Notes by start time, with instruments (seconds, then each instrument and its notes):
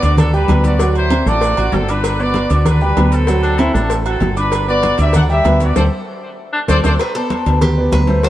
0.02 fretless electric bass D2, grand piano D4 D5 D6, trumpet section F#4 D5, cowbell, low agogo, maracas
0.17 trumpet section D4 A4, cowbell, high conga, low conga, low agogo, maracas
0.33 grand piano G3 G4 G5, trumpet section D4 B4, high conga, maracas
0.48 fretless electric bass D2, grand piano B3 B4 B5, cowbell, high conga, low timbale, low agogo, maracas
0.64 trumpet section F#4 D5, cowbell, high conga, maracas
0.79 grand piano F#3 F#4 F#5, cowbell, low agogo, maracas
0.95 trumpet section E4 C5, high conga, low agogo, maracas
1.10 grand piano C4 C5 C6, cowbell, high conga, low timbale, low agogo, maracas
1.26 fretless electric bass A1, grand piano A3 A4 A5, trumpet section F#4 D5, maracas
1.41 cowbell, high conga, low agogo, maracas
1.56 fretless electric bass A1, grand piano F#4 F#5 F#6, high conga, low agogo, maracas
1.72 fretless electric bass G1, trumpet section C4 A4, cowbell, high conga, low timbale, maracas
1.88 grand piano D4 D5 D6, trumpet section D4 B4, high conga, low agogo, maracas
2.03 cowbell, high conga, low agogo, maracas
2.19 grand piano B3 B4 B5, trumpet section F#4 D5, high conga, maracas
2.34 cowbell, high conga, low timbale, low agogo, maracas
2.50 fretless electric bass D2, grand piano D4 D5 D6, trumpet section F#4 D5, cowbell, high conga, low agogo, maracas
2.65 trumpet section D4 B4, cowbell, high conga, low conga, low agogo, maracas
2.81 grand piano G3 G4 G5, trumpet section D4 B4, high conga, maracas
2.97 fretless electric bass D2, grand piano B3 B4 B5, cowbell, high conga, low timbale, low agogo, maracas
3.12 trumpet section C4 A4, cowbell, maracas
3.27 grand piano F#3 F#4 F#5, cowbell, low agogo, maracas
3.42 baritone saxophone D4, high conga, low agogo, maracas
3.58 grand piano C4 C5 C6, baritone saxophone E4, cowbell, high conga, low timbale, low agogo, maracas
3.73 fretless electric bass A1, grand piano A3 A4 A5, baritone saxophone D4, high conga, maracas
3.90 cowbell, high conga, low agogo, maracas
4.06 trumpet section C4 A4, grand piano F#4 F#5 F#6, high conga, low agogo, maracas
4.20 fretless electric bass G1, cowbell, high conga, low timbale, maracas
4.36 grand piano D4 D5 D6, trumpet section D4 B4, high conga, low agogo, maracas
4.52 cowbell, high conga, low agogo, maracas
4.68 grand piano B3 B4 B5, trumpet section F#4 D5, high conga, maracas
4.82 cowbell, high conga, low timbale, low agogo, maracas
4.98 fretless electric bass D2, grand piano D4 D5 D6, trumpet section G4 E5, cowbell, high conga, low agogo, maracas
5.13 trumpet section A4 F#5, cowbell, high conga, low conga, low agogo, maracas
5.29 grand piano G3 G4 G5, trumpet section G4 E5, high conga, maracas
5.44 fretless electric bass D2, grand piano B3 B4 B5, cowbell, high conga, low timbale, low agogo, maracas
5.60 trumpet section F#4 D5, cowbell, high conga, maracas
5.76 fretless electric bass D2, trumpet section A4 C5 D5, grand piano A4 C5 D5, cowbell, high conga, high timbale, maracas
6.53 baritone saxophone D4
6.68 fretless electric bass D2, baritone saxophone C4, grand piano A4 C5 D5, trumpet section A4 C5 D5, cowbell, high conga, high timbale, maracas
6.84 fretless electric bass D2, grand piano A4 C5 D5, trumpet section A4 C5 D5, cowbell, high conga, high timbale, maracas
6.99 cuban tres B4, cowbell, low agogo
7.15 grand piano B3 B4 D5, cuban tres A4, high conga
7.30 cowbell, high conga, low timbale, low agogo
7.46 fretless electric bass D2, grand piano B3 B4 D5, cowbell, high conga, low agogo
7.61 cuban tres G4, cowbell, high conga, low conga, low agogo
7.77 grand piano B3 B4 D5, high conga
7.92 fretless electric bass D2, cuban tres B4, cowbell, high conga, low timbale, low agogo
8.07 grand piano A3 A4 C5, cowbell, high conga
8.23 grand piano F#3 F#4 F#5, cuban tres C5, cowbell, low agogo